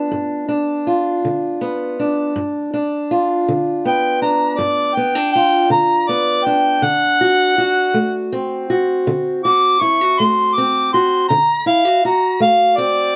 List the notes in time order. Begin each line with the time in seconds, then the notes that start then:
Already playing: B3 D4 F4
0.12 G2
0.48 D4
0.87 F4
1.25 D3
1.61 B3
2.00 D4
2.36 G2
2.74 D4
3.11 F4
3.48 D3
3.85 B3 G5
4.22 D4 A#5
4.58 G2 D5
4.95 B3 G5
5.15 D4
5.33 F4 G5
5.70 D3 A#5
6.08 B3 D5
6.44 D4 G5
6.82 D3 F#5
7.21 F#4
7.58 F#4
7.94 A3
8.32 C4
8.70 F#4
9.07 D3
9.44 F#4 D6
9.81 E4 C#6
10.01 F#4
10.19 A3 C6
10.55 C4 D6
10.93 F#4 C6
11.29 D3 A#5
11.66 E4 F5
11.85 F#4
12.05 F#4 A#5
12.40 A3 F5
12.77 C4 D5